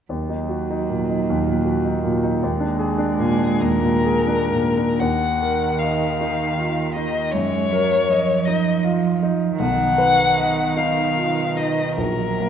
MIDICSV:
0, 0, Header, 1, 4, 480
1, 0, Start_track
1, 0, Key_signature, -6, "minor"
1, 0, Tempo, 802139
1, 66, Time_signature, 6, 3, 24, 8
1, 545, Tempo, 760456
1, 1985, Tempo, 848656
1, 2465, Tempo, 956938
1, 2945, Tempo, 809717
1, 3425, Tempo, 759494
1, 6305, Tempo, 808625
1, 7569, End_track
2, 0, Start_track
2, 0, Title_t, "Violin"
2, 0, Program_c, 0, 40
2, 1994, Note_on_c, 0, 68, 59
2, 2220, Note_on_c, 0, 70, 80
2, 2228, Note_off_c, 0, 68, 0
2, 2942, Note_on_c, 0, 78, 72
2, 2950, Note_off_c, 0, 70, 0
2, 3416, Note_on_c, 0, 77, 55
2, 3425, Note_off_c, 0, 78, 0
2, 4139, Note_off_c, 0, 77, 0
2, 4144, Note_on_c, 0, 75, 58
2, 4376, Note_on_c, 0, 73, 75
2, 4385, Note_off_c, 0, 75, 0
2, 5097, Note_on_c, 0, 75, 65
2, 5106, Note_off_c, 0, 73, 0
2, 5336, Note_off_c, 0, 75, 0
2, 5824, Note_on_c, 0, 78, 90
2, 6546, Note_on_c, 0, 77, 71
2, 6555, Note_off_c, 0, 78, 0
2, 7023, Note_on_c, 0, 75, 57
2, 7032, Note_off_c, 0, 77, 0
2, 7255, Note_off_c, 0, 75, 0
2, 7259, Note_on_c, 0, 70, 68
2, 7569, Note_off_c, 0, 70, 0
2, 7569, End_track
3, 0, Start_track
3, 0, Title_t, "Grand piano"
3, 0, Program_c, 1, 0
3, 56, Note_on_c, 1, 39, 34
3, 176, Note_on_c, 1, 63, 27
3, 181, Control_c, 1, 64, 127
3, 294, Note_on_c, 1, 66, 29
3, 374, Note_off_c, 1, 63, 0
3, 421, Note_on_c, 1, 63, 29
3, 492, Note_off_c, 1, 66, 0
3, 535, Note_on_c, 1, 46, 25
3, 617, Note_off_c, 1, 63, 0
3, 662, Note_on_c, 1, 63, 29
3, 737, Note_off_c, 1, 46, 0
3, 778, Note_off_c, 1, 39, 0
3, 788, Note_on_c, 1, 39, 34
3, 859, Note_off_c, 1, 63, 0
3, 902, Note_on_c, 1, 46, 27
3, 1012, Note_on_c, 1, 66, 33
3, 1094, Note_off_c, 1, 46, 0
3, 1136, Note_on_c, 1, 63, 29
3, 1207, Note_off_c, 1, 66, 0
3, 1256, Note_on_c, 1, 46, 35
3, 1328, Note_off_c, 1, 63, 0
3, 1378, Note_on_c, 1, 63, 30
3, 1448, Note_off_c, 1, 46, 0
3, 1475, Note_off_c, 1, 39, 0
3, 1497, Note_off_c, 1, 63, 0
3, 1503, Note_on_c, 1, 39, 42
3, 1510, Control_c, 1, 64, 0
3, 1613, Note_on_c, 1, 62, 34
3, 1622, Control_c, 1, 64, 127
3, 1730, Note_on_c, 1, 68, 39
3, 1810, Note_off_c, 1, 62, 0
3, 1853, Note_on_c, 1, 62, 38
3, 1932, Note_off_c, 1, 68, 0
3, 1983, Note_on_c, 1, 46, 40
3, 2050, Note_off_c, 1, 62, 0
3, 2093, Note_on_c, 1, 62, 34
3, 2168, Note_off_c, 1, 46, 0
3, 2207, Note_off_c, 1, 39, 0
3, 2216, Note_on_c, 1, 39, 37
3, 2285, Note_off_c, 1, 62, 0
3, 2335, Note_on_c, 1, 46, 34
3, 2471, Note_on_c, 1, 68, 38
3, 2537, Note_off_c, 1, 46, 0
3, 2581, Note_on_c, 1, 62, 32
3, 2663, Note_off_c, 1, 68, 0
3, 2703, Note_on_c, 1, 46, 32
3, 2784, Note_off_c, 1, 62, 0
3, 2836, Note_on_c, 1, 62, 26
3, 2898, Note_off_c, 1, 46, 0
3, 2926, Note_off_c, 1, 39, 0
3, 2947, Note_off_c, 1, 62, 0
3, 2950, Note_on_c, 1, 39, 39
3, 2959, Control_c, 1, 64, 0
3, 3078, Control_c, 1, 64, 127
3, 3194, Note_on_c, 1, 70, 34
3, 3436, Note_on_c, 1, 75, 33
3, 3572, Note_off_c, 1, 70, 0
3, 3678, Note_on_c, 1, 63, 36
3, 3814, Note_off_c, 1, 75, 0
3, 3912, Note_on_c, 1, 65, 30
3, 4053, Note_off_c, 1, 63, 0
3, 4148, Note_off_c, 1, 65, 0
3, 4155, Note_on_c, 1, 63, 34
3, 4363, Note_off_c, 1, 39, 0
3, 4392, Note_off_c, 1, 63, 0
3, 4397, Control_c, 1, 64, 0
3, 4399, Note_on_c, 1, 42, 39
3, 4488, Control_c, 1, 64, 127
3, 4637, Note_on_c, 1, 70, 37
3, 4875, Note_on_c, 1, 75, 37
3, 5011, Note_off_c, 1, 70, 0
3, 5110, Note_on_c, 1, 63, 37
3, 5247, Note_off_c, 1, 75, 0
3, 5343, Note_on_c, 1, 65, 35
3, 5487, Note_off_c, 1, 63, 0
3, 5582, Note_off_c, 1, 65, 0
3, 5586, Note_on_c, 1, 63, 36
3, 5801, Note_off_c, 1, 42, 0
3, 5819, Note_on_c, 1, 35, 43
3, 5824, Note_off_c, 1, 63, 0
3, 5832, Control_c, 1, 64, 0
3, 5924, Control_c, 1, 64, 127
3, 6063, Note_on_c, 1, 71, 46
3, 6308, Note_on_c, 1, 75, 42
3, 6448, Note_off_c, 1, 71, 0
3, 6542, Note_on_c, 1, 63, 36
3, 6684, Note_off_c, 1, 75, 0
3, 6777, Note_on_c, 1, 65, 32
3, 6922, Note_off_c, 1, 63, 0
3, 7017, Note_off_c, 1, 65, 0
3, 7020, Note_on_c, 1, 63, 33
3, 7234, Note_off_c, 1, 35, 0
3, 7260, Note_off_c, 1, 63, 0
3, 7261, Note_on_c, 1, 34, 35
3, 7269, Control_c, 1, 64, 0
3, 7358, Control_c, 1, 64, 127
3, 7513, Note_on_c, 1, 58, 34
3, 7569, Note_off_c, 1, 34, 0
3, 7569, Note_off_c, 1, 58, 0
3, 7569, End_track
4, 0, Start_track
4, 0, Title_t, "Cello"
4, 0, Program_c, 2, 42
4, 68, Note_on_c, 2, 54, 34
4, 1495, Note_on_c, 2, 56, 47
4, 1504, Note_off_c, 2, 54, 0
4, 2830, Note_off_c, 2, 56, 0
4, 2947, Note_on_c, 2, 51, 42
4, 4383, Note_on_c, 2, 56, 43
4, 4393, Note_off_c, 2, 51, 0
4, 4629, Note_on_c, 2, 54, 47
4, 4639, Note_off_c, 2, 56, 0
4, 4859, Note_on_c, 2, 53, 54
4, 4868, Note_off_c, 2, 54, 0
4, 5818, Note_off_c, 2, 53, 0
4, 5822, Note_on_c, 2, 51, 48
4, 7263, Note_on_c, 2, 54, 42
4, 7272, Note_off_c, 2, 51, 0
4, 7569, Note_off_c, 2, 54, 0
4, 7569, End_track
0, 0, End_of_file